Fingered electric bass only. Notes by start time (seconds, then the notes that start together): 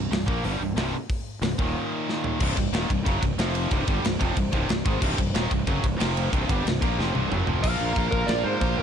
Already playing: C1
0.12 C1
0.28 A#1
0.44 G1
0.61 C1
0.76 C1
1.41 C1
1.59 D#1
2.41 C1
2.57 C1
2.72 D#1
2.90 C1
3.06 F#1
3.22 C1
3.37 F1
3.71 C1
3.88 G1
4.04 C1
4.21 F1
4.37 C1
4.53 C1
4.70 C1
4.86 G#1
5.02 C1
5.18 C1
5.34 D#1
5.51 C1
5.67 F#1
5.83 C1
6.00 F1
6.32 C1
6.49 G1
6.66 C1
6.82 A#1
6.99 F1
7.16 C1
7.32 F#1
7.48 F1
7.64 A#1
7.79 A#1
7.96 A#1
8.12 A#1
8.28 A#1
8.44 G#2
8.61 A#1
8.77 F1